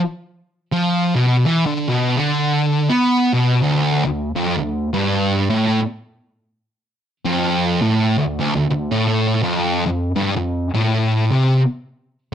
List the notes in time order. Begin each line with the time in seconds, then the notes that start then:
0.73 F3
1.15 B2
1.46 E3
1.66 D3
1.89 B2
2.17 D3
2.89 B3
3.33 B2
3.62 D2
4.05 D2
4.36 F2
4.57 D2
4.94 G2
5.50 A2
7.25 F2
7.82 A2
8.18 D2
8.40 D2
8.56 D2
8.71 D2
8.92 A2
9.43 F2
9.86 F2
10.16 G2
10.36 F2
10.74 A2
11.32 C3